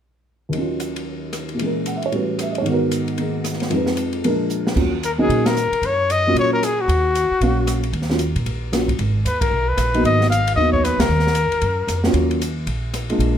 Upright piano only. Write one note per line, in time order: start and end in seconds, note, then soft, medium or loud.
0.49 1.57 D#2 soft
0.49 1.59 D#3 soft
0.55 1.60 F#3 soft
0.55 1.61 C#4 soft
0.60 1.63 F4 medium
1.54 2.10 A#2 soft
1.54 2.11 E3 soft
1.60 2.13 G#3 soft
1.60 2.13 C#4 soft
1.66 2.15 A#4 soft
1.87 2.02 F#5 soft
1.96 2.09 E5 soft
2.06 2.18 C#5 soft
2.12 2.65 A2 soft
2.12 2.65 E3 soft
2.12 2.66 G3 soft
2.12 2.66 C#4 soft
2.12 2.67 F#4 soft
2.16 2.67 B4 soft
2.42 2.55 E5 soft
2.50 2.62 D#5 soft
2.58 3.69 G#2 medium
2.58 2.71 C#5 soft
2.64 3.16 D#3 medium
2.64 3.72 B3 medium
2.70 3.73 F#4 medium
2.70 3.74 A#4 medium
3.18 3.71 D#3 soft
3.18 3.71 A#3 soft
3.18 3.72 D#4 soft
3.18 3.73 G#4 soft
3.70 4.23 F2 medium
3.70 4.23 F3 soft
3.70 4.23 G#3 soft
3.70 4.25 D#4 soft
3.75 4.26 B4 medium
4.24 4.77 A#2 medium
4.24 4.77 F3 soft
4.24 4.77 G#3 medium
4.24 4.77 D4 medium
4.24 4.78 A#4 medium
4.76 4.91 F#3 medium
4.76 4.91 A#3 soft
4.76 4.91 C#4 medium
4.76 4.91 F4 medium
5.18 5.54 F#3 medium
5.18 5.53 A#3 medium
5.18 5.54 C#4 medium
5.18 5.54 D#4 medium
6.27 6.61 F#3 medium
6.27 6.61 A#3 medium
6.27 6.61 C#4 medium
6.27 6.61 F4 medium
7.42 7.81 F#3 medium
7.42 7.81 A#3 soft
7.42 7.81 C#4 medium
7.42 7.81 F5 medium
8.10 8.19 F#3 soft
8.10 8.19 A#3 medium
8.10 8.19 C#4 medium
8.10 8.20 F4 medium
8.72 8.87 F#3 medium
8.72 8.87 A#3 medium
8.72 8.87 C#4 soft
8.72 8.87 F4 medium
9.94 10.29 F#3 medium
9.94 10.29 A#3 medium
9.94 10.28 B3 medium
9.94 10.29 D#4 medium
10.57 10.96 F#3 medium
10.57 10.96 A#3 soft
10.57 10.96 B3 soft
10.57 10.96 D#4 medium
12.05 12.39 F#3 medium
12.05 12.39 A#3 medium
12.05 12.39 C#4 medium
12.05 12.40 F4 medium
13.10 13.38 G#3 medium
13.10 13.38 A#3 medium
13.10 13.38 D4 medium
13.10 13.38 F4 medium